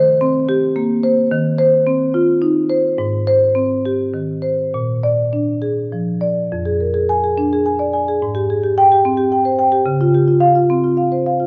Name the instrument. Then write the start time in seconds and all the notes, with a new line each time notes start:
marimba
Already playing: D#3 C5
0.21 C4
0.49 G4
0.76 A#3
1.03 C5
1.32 D#3
1.59 C5
1.87 C4
2.14 F4
2.42 D#4
2.70 C5
2.98 G#2
3.27 C5
3.55 C4
3.85 G4
4.14 D#3
4.42 C5
4.74 A#2
5.03 D5
5.33 D4
5.62 G#4
5.92 F3
6.21 D5
6.52 F2
6.65 G#4
6.80 A#4
6.94 G#4
7.09 G#5
7.24 G#4
7.38 D4
7.53 G#4
7.66 G#5
7.79 D5
7.93 G#5
8.08 G#4
8.22 G#2
8.35 G4
8.50 G#4
8.64 G4
8.78 G5
8.92 G4
9.05 C4
9.17 G4
9.32 G5
9.45 C5
9.59 G5
9.72 G4
9.86 C#3
10.01 F4
10.14 G4
10.28 F4
10.40 F5
10.55 F4
10.70 C4
10.84 F4
10.97 F5
11.12 C5
11.26 F5
11.40 F4